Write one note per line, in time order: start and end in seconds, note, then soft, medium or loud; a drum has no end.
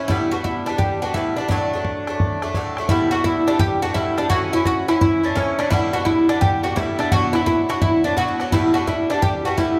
0.00 0.10 C#4 medium
0.08 0.32 A2 medium
0.08 0.32 G3 medium
0.08 0.32 B3 medium
0.08 0.31 D4 medium
0.08 0.31 E4 loud
0.08 0.31 E4 medium
0.08 bodhran medium
0.31 0.69 G3 soft
0.31 0.68 B3 soft
0.31 0.67 D4 soft
0.31 0.43 F#4 medium
0.31 0.45 F#4 medium
0.44 0.67 E4 medium
0.44 0.66 E4 medium
0.44 bodhran medium
0.66 1.04 G3 soft
0.66 1.02 B3 medium
0.66 0.78 D4 medium
0.66 1.02 D4 medium
0.66 0.80 D4 medium
0.66 bodhran medium
0.78 1.02 G4 medium
0.78 1.01 G4 medium
0.78 bodhran medium
0.90 bodhran soft
1.02 1.15 G3 soft
1.02 1.15 B3 medium
1.02 1.15 D4 soft
1.02 1.14 F#4 medium
1.02 1.15 F#4 medium
1.14 1.38 A2 soft
1.14 1.38 G3 medium
1.14 1.39 B3 medium
1.14 1.37 D4 medium
1.14 1.38 E4 medium
1.14 1.36 E4 medium
1.14 bodhran medium
1.36 1.51 B3 soft
1.36 1.47 D4 medium
1.36 1.48 D4 medium
1.36 1.50 D4 medium
1.41 1.51 G3 soft
1.48 1.73 A2 medium
1.48 1.73 F#3 medium
1.48 1.74 A3 medium
1.48 2.50 D4 medium
1.48 2.51 D4 medium
1.48 1.72 D4 medium
1.48 bodhran medium
1.73 2.09 F#3 soft
1.73 2.09 A3 soft
1.73 2.07 D4 medium
1.85 bodhran medium
2.07 2.43 F#3 soft
2.07 2.43 A3 soft
2.07 2.41 D4 medium
2.07 bodhran medium
2.20 bodhran medium
2.31 bodhran soft
2.42 2.55 F#3 soft
2.42 2.55 A3 medium
2.42 2.55 D4 medium
2.42 bodhran medium
2.54 2.78 A2 medium
2.54 2.78 F#3 medium
2.54 2.78 A3 medium
2.54 2.77 D4 medium
2.54 bodhran medium
2.77 2.90 F#3 soft
2.77 2.91 A3 medium
2.77 2.90 D4 medium
2.77 bodhran medium
2.89 3.13 A2 medium
2.89 3.13 G3 medium
2.89 3.13 B3 medium
2.89 3.11 D4 medium
2.89 3.11 E4 loud
2.89 3.13 E4 medium
2.89 3.11 E4 medium
2.89 bodhran medium
3.11 3.48 B3 soft
3.11 3.46 D4 soft
3.11 3.24 F#4 loud
3.11 3.24 F#4 medium
3.15 3.49 G3 soft
3.24 3.46 E4 medium
3.24 3.47 E4 medium
3.24 3.61 E4 medium
3.24 bodhran medium
3.47 3.84 G3 soft
3.47 3.83 B3 soft
3.47 3.81 D4 soft
3.47 3.59 D4 medium
3.47 bodhran medium
3.59 3.82 G4 loud
3.59 3.81 G4 medium
3.59 3.75 G4 medium
3.59 bodhran medium
3.71 bodhran soft
3.77 3.83 G4 medium
3.82 3.95 G3 soft
3.82 3.96 B3 medium
3.82 3.95 D4 medium
3.82 3.94 F#4 medium
3.82 3.92 F#4 medium
3.93 4.18 A2 medium
3.93 4.18 G3 medium
3.93 4.18 B3 medium
3.93 4.18 E4 loud
3.93 4.16 E4 medium
3.93 4.17 E4 medium
3.93 3.96 F#4 medium
3.93 bodhran medium
3.98 4.17 D4 medium
4.18 4.30 G3 soft
4.18 4.31 B3 medium
4.18 4.29 D4 medium
4.18 4.30 D4 medium
4.18 4.29 D4 medium
4.18 4.26 D4 medium
4.18 bodhran medium
4.26 4.53 F#4 medium
4.26 4.53 F#4 loud
4.26 4.31 G4 medium
4.30 4.53 A2 medium
4.30 4.53 E3 medium
4.30 4.53 C#4 medium
4.30 4.51 E4 medium
4.30 4.65 F#4 loud
4.30 bodhran medium
4.53 4.90 E3 soft
4.53 4.89 C#4 soft
4.53 4.87 E4 soft
4.53 4.65 E4 medium
4.53 4.65 E4 loud
4.65 4.87 F#4 medium
4.65 4.90 F#4 medium
4.65 4.88 F#4 loud
4.65 bodhran medium
4.88 5.25 E3 soft
4.88 5.24 C#4 medium
4.88 5.00 E4 medium
4.88 5.22 E4 medium
4.88 5.00 E4 medium
4.88 4.99 E4 medium
4.88 bodhran medium
5.01 5.37 E4 medium
5.01 5.22 E4 medium
5.01 bodhran medium
5.23 5.36 E3 soft
5.23 5.36 C#4 medium
5.23 5.37 D4 medium
5.23 5.36 E4 medium
5.36 5.59 A2 medium
5.36 5.59 E3 medium
5.36 5.59 C#4 loud
5.36 5.58 C#4 medium
5.36 5.60 C#4 medium
5.36 5.59 C#4 medium
5.36 5.57 E4 medium
5.36 bodhran medium
5.59 5.72 E3 soft
5.59 5.72 C#4 medium
5.59 5.70 D4 medium
5.59 5.72 D4 medium
5.59 5.71 D4 medium
5.59 5.71 E4 soft
5.59 bodhran medium
5.70 5.94 A2 medium
5.70 5.94 G3 medium
5.70 5.94 B3 medium
5.70 5.93 D4 medium
5.70 5.92 E4 loud
5.70 5.93 E4 medium
5.70 5.95 E4 medium
5.70 bodhran medium
5.93 6.30 G3 soft
5.93 6.30 B3 soft
5.93 6.28 D4 medium
5.93 6.05 F#4 medium
5.93 6.08 F#4 medium
6.05 6.29 E4 loud
6.05 6.27 E4 medium
6.05 6.30 E4 medium
6.05 bodhran medium
6.29 6.66 G3 soft
6.29 6.65 B3 soft
6.29 6.64 D4 medium
6.29 6.41 D4 medium
6.29 bodhran medium
6.41 6.63 G4 loud
6.41 6.63 G4 medium
6.41 6.65 G4 medium
6.41 bodhran loud
6.54 bodhran soft
6.63 6.76 G3 soft
6.63 6.77 B3 soft
6.63 6.77 D4 medium
6.63 6.76 F#4 medium
6.63 6.70 F#4 medium
6.76 6.99 A2 medium
6.76 7.00 G3 medium
6.76 6.99 B3 medium
6.76 6.98 D4 medium
6.76 6.98 E4 medium
6.76 7.13 E4 medium
6.76 bodhran medium
6.99 7.13 G3 soft
6.99 7.12 B3 medium
6.99 7.11 D4 medium
6.99 7.12 D4 medium
6.99 bodhran medium
7.12 7.35 B2 medium
7.12 7.35 F#3 medium
7.12 7.35 B3 medium
7.12 7.33 D4 medium
7.12 7.33 F#4 loud
7.12 7.35 F#4 medium
7.12 7.36 F#4 medium
7.12 bodhran medium
7.33 7.70 F#3 soft
7.33 7.70 B3 soft
7.33 7.69 D4 medium
7.33 7.45 E4 medium
7.33 7.46 E4 medium
7.33 bodhran medium
7.46 7.69 E4 medium
7.46 7.71 E4 medium
7.46 7.69 E4 medium
7.46 bodhran medium
7.69 8.06 F#3 soft
7.69 8.05 B3 soft
7.69 8.04 D4 medium
7.69 7.81 F#4 medium
7.69 7.75 F#4 medium
7.69 7.83 F#4 medium
7.69 bodhran medium
7.82 8.03 E4 medium
7.82 8.06 E4 medium
7.82 bodhran medium
7.94 bodhran soft
8.04 8.17 F#3 soft
8.04 8.18 B3 soft
8.04 8.17 D4 medium
8.04 8.16 D4 medium
8.04 8.18 D4 medium
8.04 8.18 D4 soft
8.17 8.40 B2 medium
8.17 8.41 F#3 medium
8.17 8.40 B3 medium
8.17 8.39 D4 medium
8.17 8.27 F#4 medium
8.17 8.53 F#4 medium
8.17 8.50 F#4 loud
8.17 bodhran medium
8.28 8.40 F#4 medium
8.40 8.53 F#3 soft
8.40 8.53 B3 soft
8.40 8.52 D4 medium
8.40 8.52 F#4 medium
8.40 bodhran medium
8.52 8.76 A2 medium
8.52 8.76 G3 medium
8.52 8.75 B3 medium
8.52 8.74 D4 medium
8.52 8.73 E4 loud
8.52 8.74 E4 medium
8.52 8.77 E4 medium
8.52 bodhran medium
8.74 9.12 G3 soft
8.74 9.11 B3 soft
8.74 9.10 D4 medium
8.74 8.87 F#4 medium
8.74 8.88 F#4 medium
8.87 9.09 E4 medium
8.87 9.11 E4 medium
8.87 bodhran medium
9.10 9.46 B3 soft
9.10 9.22 D4 medium
9.10 9.23 D4 medium
9.10 9.45 D4 medium
9.10 bodhran medium
9.14 9.47 G3 soft
9.22 9.44 G4 loud
9.22 9.44 G4 medium
9.22 9.47 G4 medium
9.22 bodhran medium
9.35 bodhran soft
9.45 9.58 G3 soft
9.45 9.59 B3 soft
9.45 9.58 D4 medium
9.45 9.58 F#4 medium
9.45 9.57 F#4 medium
9.45 9.58 F#4 medium
9.57 9.79 A2 medium
9.57 9.79 G3 medium
9.57 9.79 B3 medium
9.57 9.79 D4 medium
9.57 9.79 E4 medium
9.57 bodhran medium